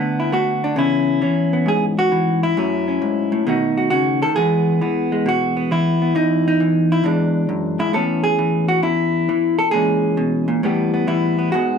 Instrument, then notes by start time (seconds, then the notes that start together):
hollow-body jazz guitar
Already playing: D3 A3 B3 A4
0.20 E4
0.32 A3 F#4
0.64 D4
0.76 C#3 E3 B3 C#4 E4
1.22 E3 C#4
1.53 B3
1.66 G#2 G#4
1.99 F#4
2.12 E3
2.43 E4
2.57 F#2 F#3 A3 C#4
2.88 C#4
3.02 G#2
3.32 A2
3.47 B2 D#3 A3 D#4 F#4
3.77 F#4
3.90 C#3 F#4
4.22 D#3 A4
4.36 E2 E3 G#3 B3 G#4
4.81 E3 B3
5.12 G#3
5.26 B2 F#4
5.57 B3
5.71 E3 E4
6.02 B3
6.15 E2 D#4
6.48 D#4
6.60 E3
6.92 E4
7.04 E2 E3 G#3 D4
7.49 F#2
7.79 G#2 E4
7.93 A2 E3 B3 C#4 A4
8.24 G#4
8.39 E3
8.68 F#4
8.83 E2 E4
9.29 E3
9.59 A4
9.71 A#2 E3 G#3 C#4 G#4
10.17 B2
10.48 A#2
10.63 A2 E3 G3 B3 G4
10.94 B3
11.07 E3 E4
11.39 B3
11.52 G#2 G#3 B3 F#4